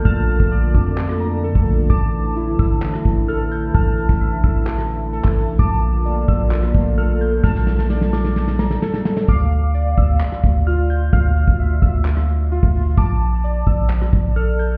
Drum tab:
HH |x-x-----x-x-x-o-|x---x-x-x-x-x-x-|x-x-----x-x-x-o-|x---x-x-x-x-x-x-|
CP |--------x-------|--------x-------|--------x----x--|--------x-------|
SD |---------r------|---------r------|---r-----r------|---------r------|
BD |o--o--o------o--|o-----o---o-----|o--o--o------o--|o-----o---o-----|

HH |----------------|x---x-x-x-x-x-x-|x-x-----x-x-x-o-|x---x-x-x-x-x-x-|
CP |----------------|--------x-------|--------x-------|--------x-------|
SD |oooooooooooooooo|---------r------|---------r------|---------r------|
BD |o---------------|o-----o---o-----|o--o--o------o--|o-----o---o-----|